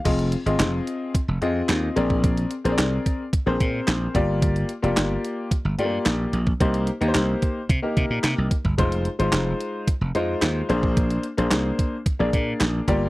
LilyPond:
<<
  \new Staff \with { instrumentName = "Grand piano" } { \time 4/4 \key f \dorian \tempo 4 = 110 << { f''16 r2. r8. | r1 | r1 | r1 |
r1 | r1 | } \\ { <c' f' aes' ees''>8 r16 <c' f' aes' ees''>4~ <c' f' aes' ees''>16 r8 <c' f' aes' ees''>4 <c' aes' bes' d''>8~ | <c' aes' bes' d''>8 r16 <c' aes' bes' c'' d''>4 r8 <c' aes' bes' c''>4~ <c' aes' bes' c''>16 <bes f' g' d''>8~ | <bes f' g' d''>8 r16 <bes f' g' d''>4~ <bes f' g' d''>16 r8 <a bes f' g' d''>4 r8 | <bes ees' g' c''>8 r16 <bes ees' g' bes' c''>4 r8 <bes ees' g' bes'>4~ <bes ees' g' bes'>16 r8 |
<aes ees' f' c''>8 r16 <aes ees' f' c''>4~ <aes ees' f' c''>16 r8 <aes ees' f' c''>4 <bes d' aes' c''>8~ | <bes d' aes' c''>8 r16 <bes d' aes' c''>4 r8 <bes d' aes' d''>4~ <bes d' aes' d''>16 <bes f' g' d''>8 | } >> }
  \new Staff \with { instrumentName = "Slap bass" } { \clef bass \time 4/4 \key f \dorian f,,8. aes,,16 f,,8 r8. f,,16 f,8 ees,8 bes,,8~ | bes,,8. bes,,16 c,8 r8. bes,,16 bes,8 bes,,8 g,,8~ | g,,8. f,,16 g,,8 r8. g,,16 g,8 bes,,8 bes,,8 | c,8. ees,16 c,8 r8 c16 r16 c16 bes,16 c16 c,16 r16 g,,16 |
f,,8. aes,,16 f,,8 r8. f,,16 f,8 ees,8 bes,,8~ | bes,,8. bes,,16 c,8 r8. bes,,16 bes,8 bes,,8 g,,8 | }
  \new DrumStaff \with { instrumentName = "Drums" } \drummode { \time 4/4 <cymc hh bd>16 hh16 hh16 hh16 <hc hh sn>8 hh8 <hh bd>8 hh8 <hc hh sn>8 hh16 bd16 | <hh bd>16 hh16 hh16 hh16 <hc hh sn>8 <hh bd>8 <hh bd>8 <hh bd>8 <hc hh sn>8 <hh bd>8 | <hh bd>16 hh16 hh16 hh16 <hc hh sn>8 hh8 <hh bd>8 hh8 <hc hh sn>8 hh16 bd16 | <hh bd>16 hh16 hh16 hh16 <hc hh sn>8 <hh bd>8 <hh bd>8 <hh bd>8 <hc hh sn>8 <hh bd>16 bd16 |
<hh bd>16 hh16 hh16 hh16 <hc hh sn>8 hh8 <hh bd>8 hh8 <hc hh sn>8 hh16 bd16 | <hh bd>16 hh16 hh16 hh16 <hc hh sn>8 <hh bd>8 <hh bd>8 <hh bd>8 <hc hh sn>8 <hh bd>8 | }
>>